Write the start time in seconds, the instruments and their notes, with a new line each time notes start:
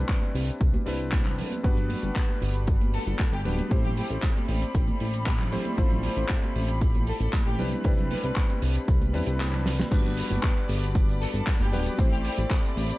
Already playing: electric grand piano G3 C4 D4 E4 B4
0.09 kick, clap, closed hi-hat, tambourine
0.21 closed hi-hat, tambourine, high conga
0.35 analog synth bass C2, open hi-hat, tambourine
0.49 closed hi-hat, tambourine
0.61 analog synth bass C2, kick, closed hi-hat, tambourine
0.74 closed hi-hat, tambourine, high conga
0.86 analog synth bass C2, electric grand piano G3 C4 D4 E4 B4, open hi-hat, tambourine
0.99 closed hi-hat, tambourine
1.12 kick, clap, closed hi-hat, tambourine, high conga
1.25 clap, closed hi-hat, tambourine, low conga
1.38 open hi-hat, tambourine, low conga
1.51 closed hi-hat, tambourine, high conga
1.63 analog synth bass G1, electric grand piano G3 B3 D4 F#4 B4, string section G3 B5, kick, closed hi-hat, tambourine
1.77 closed hi-hat, tambourine, low conga
1.89 open hi-hat, tambourine, high conga
2.03 analog synth bass G1, closed hi-hat, tambourine
2.16 kick, clap, closed hi-hat, tambourine
2.29 closed hi-hat, tambourine, high conga
2.42 analog synth bass G1, open hi-hat, tambourine
2.54 closed hi-hat, tambourine
2.67 kick, closed hi-hat, tambourine
2.81 closed hi-hat, tambourine, high conga
2.94 violin section A4, open hi-hat, tambourine
3.07 analog synth bass G1, violin section A4, closed hi-hat, tambourine
3.19 kick, clap, closed hi-hat, tambourine, high conga
3.32 analog synth bass G1, violin section G4, closed hi-hat, tambourine
3.45 analog synth bass D1, electric grand piano G3 B3 D4 F#4 B4, violin section G4, open hi-hat, tambourine, low conga
3.59 closed hi-hat, tambourine, high conga
3.70 analog synth bass A1, electric grand piano A3 C4 E4 G4 C5, kick, closed hi-hat, tambourine
3.84 violin section G4, closed hi-hat, tambourine, low conga
3.97 violin section G4, open hi-hat, tambourine, high conga
4.10 analog synth bass A1, closed hi-hat, tambourine
4.22 kick, clap, closed hi-hat, tambourine
4.37 closed hi-hat, tambourine, high conga
4.48 analog synth bass A1, open hi-hat, tambourine
4.62 closed hi-hat
4.75 analog synth bass A1, kick, closed hi-hat, tambourine
4.88 closed hi-hat, tambourine, high conga
5.00 analog synth bass A1, open hi-hat, tambourine
5.13 closed hi-hat, tambourine
5.26 kick, clap, closed hi-hat, tambourine, high conga
5.39 clap, closed hi-hat, tambourine, low conga
5.52 electric grand piano A3 C4 E4 G4 C5, open hi-hat, tambourine, low conga
5.65 closed hi-hat, tambourine, high conga
5.77 analog synth bass A1, electric grand piano A3 C4 E4 F4 C5, kick, closed hi-hat, tambourine
5.90 closed hi-hat, tambourine, low conga
6.03 open hi-hat, tambourine, high conga
6.17 analog synth bass A1, closed hi-hat, tambourine
6.29 kick, clap, closed hi-hat, tambourine
6.42 closed hi-hat, tambourine, high conga
6.56 analog synth bass A1, open hi-hat, tambourine
6.68 closed hi-hat, tambourine
6.81 kick, closed hi-hat, tambourine
6.95 closed hi-hat, tambourine, high conga
7.07 violin section A4, open hi-hat, tambourine
7.20 analog synth bass A1, violin section A4, closed hi-hat, tambourine
7.33 kick, clap, closed hi-hat, tambourine, high conga
7.46 analog synth bass A1, violin section G4, closed hi-hat, tambourine
7.58 analog synth bass C2, electric grand piano G3 C4 D4 E4 B4, open hi-hat, tambourine, low conga
7.72 closed hi-hat, tambourine, high conga
7.84 analog synth bass C2, electric grand piano G3 C4 D4 E4 B4, kick, closed hi-hat, tambourine
7.98 closed hi-hat, tambourine, low conga
8.11 violin section B4, open hi-hat, tambourine, high conga
8.24 analog synth bass C2, violin section B4, closed hi-hat, tambourine
8.36 kick, clap, closed hi-hat, tambourine
8.50 closed hi-hat, tambourine, high conga
8.62 analog synth bass C2, open hi-hat, tambourine
8.75 closed hi-hat, tambourine
8.88 analog synth bass C2, kick, closed hi-hat, tambourine
9.01 closed hi-hat, tambourine, high conga
9.13 analog synth bass E2, electric grand piano G3 C4 D4 E4 B4, open hi-hat, tambourine
9.27 analog synth bass C2, closed hi-hat, tambourine
9.40 clap, closed hi-hat, tambourine, high conga
9.53 clap, closed hi-hat, tambourine, low conga
9.66 snare, open hi-hat, tambourine, low conga
9.79 snare, closed hi-hat, tambourine, high conga
9.91 analog synth bass G1, electric grand piano G3 B3 D4 F#4 B4, string section D5 B5, kick, closed hi-hat, crash, tambourine, shaker
10.04 closed hi-hat, low conga, shaker
10.17 open hi-hat, tambourine, shaker
10.30 analog synth bass G1, closed hi-hat, tambourine, high conga, shaker
10.43 kick, clap, closed hi-hat, tambourine, shaker
10.57 closed hi-hat, shaker
10.69 analog synth bass G1, open hi-hat, tambourine, shaker
10.83 closed hi-hat, tambourine, shaker
10.95 kick, closed hi-hat, tambourine, high conga, shaker
11.08 closed hi-hat, tambourine, shaker
11.21 violin section A4, open hi-hat, tambourine, shaker
11.34 analog synth bass G1, violin section A4, closed hi-hat, tambourine, shaker
11.47 kick, clap, closed hi-hat, tambourine, shaker
11.59 analog synth bass G1, violin section G4, closed hi-hat, tambourine, high conga, shaker
11.72 analog synth bass D1, electric grand piano G3 B3 D4 F#4 B4, violin section G4, open hi-hat, tambourine, low conga, shaker
11.86 closed hi-hat, tambourine, shaker
11.98 analog synth bass A1, electric grand piano A3 C4 E4 G4 C5, kick, closed hi-hat, tambourine, shaker
12.12 violin section G4, closed hi-hat, shaker
12.24 violin section G4, open hi-hat, tambourine, shaker
12.37 analog synth bass A1, closed hi-hat, tambourine, high conga, shaker
12.50 kick, clap, closed hi-hat, tambourine, shaker
12.63 closed hi-hat, shaker
12.76 analog synth bass A1, open hi-hat, tambourine, shaker
12.89 closed hi-hat, tambourine, shaker